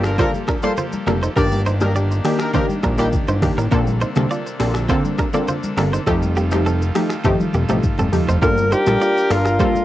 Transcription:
Already playing: analog synth bass G1, pipe organ F3 A#3 G4 A4
0.04 horn section D4 F4 A#4, finger snap, cross-stick, shaker
0.18 synth pluck G3 A#3 F4 A4, horn section D4 F4 A#4, clean electric guitar F4 C5, kick, low conga, shaker
0.34 high conga, shaker
0.48 clean electric guitar D4 A#4, finger snap, kick, cross-stick, shaker
0.63 synth pluck G3 A#3 F4 A4, horn section F4 A4 C5, clean electric guitar F4 D5, high conga, shaker
0.77 clean electric guitar F4 C5, low conga, shaker
0.93 high conga, shaker
1.07 analog synth bass F1, synth pluck G3 A#3 F4 A4, clean electric guitar D4 A#4, finger snap, cross-stick, low conga, shaker
1.23 clean electric guitar D#4 C5, shaker
1.36 analog synth bass G1, synth pluck D#3 A#3 D4 G4, pipe organ D#3 A#3 D4 G4, clean electric guitar D4 A#4, horn section G4 A#4 D5, kick, shaker
1.52 high conga, shaker
1.66 clean electric guitar D#4 C5, high conga, shaker
1.80 synth pluck D#3 A#3 D4 G4, horn section D#4 G4 A#4, finger snap, cross-stick, high conga, shaker
1.96 clean electric guitar G4 D5, shaker
2.11 shaker
2.24 synth pluck D#3 A#3 D4 G4, horn section G3 D#4 G4, finger snap, cross-stick, open hi-hat, shaker
2.39 horn section D#4 G4 A#4, finger snap, cross-stick, shaker
2.54 synth pluck D#3 A#3 D4 G4, horn section D#4 G4 A#4, clean electric guitar D#4 C5, kick, low conga, shaker
2.69 high conga, shaker
2.83 analog synth bass A#1, clean electric guitar D4 A#4, finger snap, kick, cross-stick, shaker
2.98 synth pluck D#3 A#3 D4 G4, horn section G3 D#4 G4, clean electric guitar F4 D5, high conga, shaker
3.13 kick, low conga, shaker
3.28 analog synth bass G1, clean electric guitar D#4 C5, high conga, shaker
3.42 synth pluck D#3 A#3 D4 G4, finger snap, kick, cross-stick, open hi-hat, low conga, shaker
3.57 analog synth bass A1, clean electric guitar D4 A#4, shaker
3.71 analog synth bass A#1, pipe organ C3 A4, synth pluck D3 A#3 C4 A4, clean electric guitar D4 A#4, kick, shaker
3.87 high conga, shaker
4.01 clean electric guitar D#4 C5, high conga, shaker
4.16 analog synth bass C2, synth pluck D3 A#3 C4 A4, finger snap, cross-stick, high conga, shaker
4.31 clean electric guitar F4 D5, shaker
4.47 shaker
4.59 analog synth bass A#1, synth pluck D3 A#3 C4 A4, finger snap, cross-stick, open hi-hat, shaker
4.74 finger snap, cross-stick, shaker
4.89 synth pluck D3 A#3 C4 A4, clean electric guitar F4 C5, kick, low conga, shaker
5.05 high conga, shaker
5.18 clean electric guitar D4 A#4, finger snap, kick, cross-stick, shaker
5.33 synth pluck D3 A#3 C4 A4, clean electric guitar F4 D5, high conga, shaker
5.48 clean electric guitar F4 C5, low conga, shaker
5.63 high conga, shaker
5.77 analog synth bass G1, synth pluck D3 A#3 C4 A4, clean electric guitar D4 A#4, finger snap, cross-stick, open hi-hat, low conga, shaker
5.93 clean electric guitar D#4 C5, shaker
6.07 analog synth bass F1, pipe organ D#3 G3 F4, synth pluck F3 A3 D#4 G4, clean electric guitar C4 A4, finger snap, kick, cross-stick, shaker
6.22 high conga, shaker
6.37 clean electric guitar A#3 G4, high conga, shaker
6.51 synth pluck F3 A3 D#4 G4, finger snap, cross-stick, high conga, shaker
6.66 clean electric guitar C4 A4, shaker
6.82 shaker
6.95 synth pluck F3 A3 D#4 G4, finger snap, cross-stick, open hi-hat, shaker
7.09 finger snap, cross-stick, shaker
7.24 analog synth bass G1, synth pluck F3 A3 D#4 G4, clean electric guitar C4 A4, kick, high tom, low conga, shaker
7.40 high tom, high conga, shaker
7.54 analog synth bass F1, clean electric guitar A#3 G4, mid tom, shaker
7.69 analog synth bass A1, synth pluck F3 A3 D#4 G4, clean electric guitar C4 A4, mid tom, high conga, shaker
7.83 kick, mid tom, low conga, shaker
7.99 analog synth bass F1, clean electric guitar C4 A4, mid tom, high conga, shaker
8.12 synth pluck F3 A3 D#4 G4, floor tom, open hi-hat, low conga, shaker
8.28 analog synth bass F1, clean electric guitar D#4 C5, floor tom, shaker
8.42 analog synth bass G1, synth pluck G3 A#3 F4 A4, horn section D4 F4 A#4, clean electric guitar D4 A#4, alto saxophone A#4, kick, shaker
8.58 high conga, shaker
8.72 clean electric guitar D#4 C5, alto saxophone G4, shaker
8.86 analog synth bass A#1, synth pluck G3 A#3 F4 A4, finger snap, cross-stick, high conga, shaker
9.02 clean electric guitar F4 D5, shaker
9.17 shaker
9.30 analog synth bass G1, synth pluck G3 A#3 F4 A4, alto saxophone F4, finger snap, cross-stick, open hi-hat, shaker
9.45 finger snap, cross-stick, shaker
9.59 synth pluck G3 A#3 F4 A4, alto saxophone F4, clean electric guitar F4 C5, kick, shaker
9.75 high conga, shaker

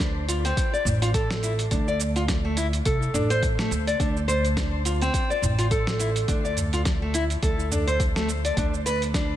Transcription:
Already playing: upright bass D2
0.00 nylon-string guitar D4, kick, snare, closed hi-hat, shaker
0.28 nylon-string guitar F4, closed hi-hat, shaker
0.45 nylon-string guitar C4, closed hi-hat, shaker
0.57 kick, closed hi-hat, shaker
0.73 nylon-string guitar D5, shaker
0.85 upright bass A1, udu, shaker
1.02 nylon-string guitar F4, closed hi-hat, shaker
1.14 nylon-string guitar A4, kick, closed hi-hat, shaker
1.31 snare, shaker
1.43 nylon-string guitar E4, closed hi-hat, shaker
1.59 closed hi-hat, shaker
1.71 upright bass D2, nylon-string guitar D4, kick, closed hi-hat, shaker
1.88 nylon-string guitar D5, shaker
2.00 closed hi-hat, shaker
2.16 nylon-string guitar F4, closed hi-hat, shaker
2.28 kick, snare, closed hi-hat, shaker
2.45 nylon-string guitar A3
2.57 nylon-string guitar E4, closed hi-hat, shaker
2.73 closed hi-hat, shaker
2.85 upright bass C2, nylon-string guitar A4, kick, closed hi-hat, shaker
3.02 shaker
3.14 upright bass A1, nylon-string guitar D4, udu, shaker
3.30 nylon-string guitar C5, closed hi-hat, shaker
3.43 kick, closed hi-hat, shaker
3.59 nylon-string guitar A3, snare, shaker
3.71 upright bass D2, closed hi-hat, shaker
3.87 nylon-string guitar D5, closed hi-hat, shaker
4.00 upright bass D2, nylon-string guitar D4, kick, closed hi-hat, shaker
4.17 shaker
4.28 nylon-string guitar C5, closed hi-hat, shaker
4.45 closed hi-hat, shaker
4.57 nylon-string guitar D4, kick, snare, closed hi-hat, shaker
4.85 nylon-string guitar F4, closed hi-hat, shaker
5.01 nylon-string guitar C4, closed hi-hat, shaker
5.14 kick, closed hi-hat, shaker
5.30 nylon-string guitar D5, shaker
5.42 upright bass A1, udu, shaker
5.59 nylon-string guitar F4, closed hi-hat, shaker
5.71 nylon-string guitar A4, kick, closed hi-hat, shaker
5.87 snare, shaker
5.99 nylon-string guitar E4, closed hi-hat, shaker
6.16 closed hi-hat, shaker
6.28 upright bass D2, nylon-string guitar D4, kick, closed hi-hat, shaker
6.45 nylon-string guitar D5, shaker
6.57 closed hi-hat, udu, shaker
6.73 nylon-string guitar F4, closed hi-hat, shaker
6.85 kick, snare, closed hi-hat, shaker
7.02 nylon-string guitar A3
7.14 nylon-string guitar E4, closed hi-hat, shaker
7.30 closed hi-hat, shaker
7.43 upright bass D2, nylon-string guitar A4, kick, closed hi-hat, shaker
7.60 shaker
7.71 nylon-string guitar D4, udu, shaker
7.87 nylon-string guitar C5, closed hi-hat, shaker
8.00 kick, closed hi-hat, shaker
8.16 nylon-string guitar A3, snare, shaker
8.29 closed hi-hat, shaker
8.45 nylon-string guitar D5, closed hi-hat, shaker
8.57 upright bass D2, nylon-string guitar D4, kick, closed hi-hat, shaker
8.74 shaker
8.86 nylon-string guitar B4, closed hi-hat, shaker
9.02 closed hi-hat, shaker
9.14 nylon-string guitar D4, kick, snare, closed hi-hat, shaker

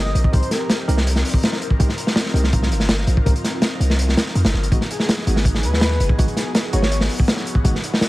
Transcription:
Already playing: 808-style bass G1, analog synth pad C4 D#4 G4 A#4, soft synth lead D#5
0.06 snare
0.15 808-style bass A#1, closed hi-hat
0.24 kick
0.33 808-style bass C2, tine electric piano C4 D#4 G4 A#4, soft synth lead C5, kick, closed hi-hat
0.43 closed hi-hat
0.51 soft synth lead A#4, snare, closed hi-hat
0.70 snare, closed hi-hat
0.88 808-style bass C2, tine electric piano C4 D#4 G4 A#4, closed hi-hat
0.97 snare
1.07 closed hi-hat
1.16 snare
1.25 open hi-hat
1.34 kick
1.43 snare, closed hi-hat
1.53 snare
1.62 closed hi-hat
1.70 kick
1.79 808-style bass C2, tine electric piano C4 D#4 G4 A#4, analog synth pad F4, kick, closed hi-hat
1.89 snare
1.98 closed hi-hat
2.07 snare
2.16 snare, closed hi-hat
2.26 snare
2.34 808-style bass C2, tine electric piano C4 D#4 G4 A#4, closed hi-hat
2.44 snare
2.53 kick, closed hi-hat
2.63 snare
2.70 808-style bass G1, closed hi-hat
2.80 snare
2.89 snare, closed hi-hat
2.98 snare
3.07 808-style bass A#1, closed hi-hat
3.17 kick
3.25 808-style bass C2, tine electric piano C4 D#4 G4 A#4, kick, closed hi-hat
3.36 closed hi-hat
3.44 snare, closed hi-hat
3.62 snare, closed hi-hat
3.80 808-style bass C2, closed hi-hat
3.90 snare
3.99 closed hi-hat
4.09 snare
4.17 snare, closed hi-hat
4.26 snare
4.35 808-style bass F2, closed hi-hat
4.45 808-style bass G1, snare, closed hi-hat
4.53 808-style bass G1, snare
4.63 closed hi-hat
4.72 808-style bass G#1, tine electric piano G#3 B3 D#4 F#4, analog synth pad B3 F#4 G#4, kick, closed hi-hat
4.81 snare
4.90 soft synth lead G#4, closed hi-hat
5.00 soft synth lead G#4, snare
5.09 snare, closed hi-hat
5.18 snare
5.27 808-style bass G#1, tine electric piano G#3 B3 D#4 F#4, closed hi-hat
5.36 snare
5.45 kick, closed hi-hat
5.55 snare
5.63 808-style bass D#2, soft synth lead B4, closed hi-hat
5.74 snare
5.81 snare, closed hi-hat
5.91 snare
6.00 808-style bass F#1, closed hi-hat
6.09 kick
6.18 808-style bass G#1, tine electric piano G#3 B3 D#4 F#4, kick, closed hi-hat
6.28 closed hi-hat
6.36 soft synth lead G#4, snare, closed hi-hat
6.46 soft synth lead G#4
6.55 snare, closed hi-hat
6.73 808-style bass G#1, tine electric piano G#3 B3 D#4 F#4, soft synth lead C#5, closed hi-hat
6.83 snare
6.92 closed hi-hat
7.01 snare
7.09 open hi-hat
7.20 kick
7.28 snare, closed hi-hat
7.37 snare
7.47 closed hi-hat
7.55 kick
7.64 808-style bass G#1, tine electric piano G#3 B3 D#4 F#4, analog synth pad A#4, kick, closed hi-hat
7.75 snare
7.84 closed hi-hat
7.94 snare
8.01 snare, closed hi-hat

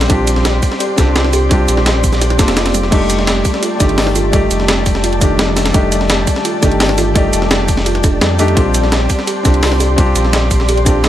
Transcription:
Already playing: felt piano C4 D4 F4 G4, ambient pad G4 D5 C6
0.01 snare, ride
0.08 sub bass A#1, kalimba G3, felt piano C4 D4 F4 G4, kick, closed hi-hat, ride
0.27 closed hi-hat, ride, cabasa
0.36 snare
0.45 snare, closed hi-hat, ride
0.63 kick, open hi-hat, ride, cabasa
0.72 snare
0.80 kalimba G4, closed hi-hat, ride
0.96 sub bass C2, felt piano C4 D4 F4 G4, kalimba D4, kick, snare, closed hi-hat, ride, cabasa
1.16 kalimba F4, snare, closed hi-hat, ride
1.24 snare
1.33 kalimba G4, open hi-hat, ride, cabasa
1.49 kalimba G3, felt piano C4 D4 F4 G4, kick, closed hi-hat, ride
1.68 sub bass A#1, closed hi-hat, ride, cabasa
1.77 snare
1.86 snare, closed hi-hat, ride
2.04 kick, open hi-hat, cabasa
2.13 snare, cabasa
2.21 kalimba G4, snare, closed hi-hat, ride
2.30 snare, ride
2.37 sub bass F1, kalimba A#3, felt piano C4 D4 F4 G4, kick, snare, closed hi-hat, ride, cabasa
2.48 sub bass F1, snare, ride
2.57 kalimba F4, snare, closed hi-hat, ride
2.66 snare, ride
2.74 kalimba G3, open hi-hat, ride, cabasa
2.83 snare
2.90 sub bass F1, kalimba G3, felt piano A3 D4 D#4 G4, ambient pad G4 A5, kick, closed hi-hat, crash, ride
3.10 closed hi-hat, ride, cabasa
3.19 snare
3.27 snare, closed hi-hat, ride
3.45 kick, open hi-hat, ride, cabasa
3.54 snare
3.63 kalimba F4, closed hi-hat, ride
3.79 sub bass G1, felt piano D#3 A3 G4 D5, kalimba D4, kick, snare, closed hi-hat, ride, cabasa
3.89 ride
3.98 snare, closed hi-hat, open hi-hat
4.07 snare
4.15 kalimba F4, open hi-hat, ride, cabasa
4.31 kalimba G3, felt piano A3 D#4 G4 D5, kick, closed hi-hat, ride
4.51 sub bass F1, closed hi-hat, ride, cabasa
4.60 snare
4.68 snare, closed hi-hat, ride
4.86 kick, open hi-hat, ride, cabasa
4.95 snare
5.04 kalimba F4, closed hi-hat, ride
5.13 ride
5.20 felt piano D#3 A3 D4 G4, kalimba D4, kick, closed hi-hat, ride, cabasa
5.39 kalimba G3, snare, closed hi-hat, ride
5.57 snare, open hi-hat, ride, cabasa
5.66 snare, ride
5.73 sub bass F1, kalimba G3, felt piano A3 D4 D#4 G4, kick, closed hi-hat, ride
5.92 closed hi-hat, ride, cabasa
6.01 snare
6.10 snare, closed hi-hat, ride
6.27 kick, open hi-hat, ride, cabasa
6.36 snare
6.45 kalimba F4, closed hi-hat, ride
6.61 sub bass G1, felt piano D#3 A3 G4 D5, kalimba D4, kick, snare, closed hi-hat, ride, cabasa
6.72 ride
6.80 kalimba D#4, snare, closed hi-hat, open hi-hat
6.89 snare
6.98 kalimba F4, open hi-hat, ride, cabasa
7.14 kalimba G3, felt piano A3 D#4 G4 D5, kick, closed hi-hat, ride
7.33 sub bass F1, closed hi-hat, ride, cabasa
7.42 snare
7.51 snare, closed hi-hat, ride
7.68 kick, open hi-hat, ride, cabasa
7.77 snare
7.86 kalimba F4, closed hi-hat, ride
7.95 snare, ride
8.04 kalimba D4, kick, closed hi-hat, ride, cabasa
8.21 sub bass F2, kalimba G3, snare, closed hi-hat, ride
8.38 felt piano A3 D4 D#4 G4, open hi-hat, ride, cabasa
8.48 ride
8.55 sub bass A#1, kalimba G3, felt piano C4 D4 F4 G4, ambient pad D5 C6, kick, closed hi-hat, ride
8.74 closed hi-hat, ride, cabasa
8.83 snare
8.92 snare, closed hi-hat, ride
9.10 kick, open hi-hat, ride, cabasa
9.19 snare
9.27 kalimba G4, closed hi-hat, ride
9.43 sub bass C2, felt piano C4 D4 F4 G4, kalimba D4, kick, snare, closed hi-hat, ride, cabasa
9.54 ride
9.63 kalimba F4, snare, closed hi-hat, open hi-hat
9.72 snare
9.80 kalimba G4, open hi-hat, ride, cabasa
9.96 kalimba G3, felt piano C4 D4 F4 G4, kick, closed hi-hat, ride
10.16 sub bass A#1, closed hi-hat, ride, cabasa
10.25 snare
10.33 snare, closed hi-hat, ride
10.51 kick, open hi-hat, ride, cabasa
10.60 snare
10.69 kalimba G4, closed hi-hat, ride
10.77 ride
10.85 felt piano C4 D4 F4 G4, kalimba D4, kick, closed hi-hat, ride, cabasa
11.04 kalimba G3, snare, closed hi-hat, ride

